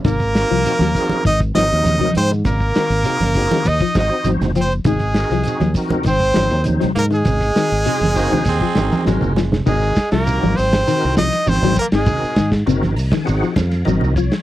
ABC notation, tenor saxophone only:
X:1
M:4/4
L:1/16
Q:1/4=100
K:Abmix
V:1 name="Tenor saxophone"
B,8 E2 E4 C2 | B,8 E2 E2 z2 C2 | A,6 z2 C4 z2 B, A,- | A,12 z4 |
A,3 B,3 C4 E2 C2 B, A,- | A,3 z12 z |]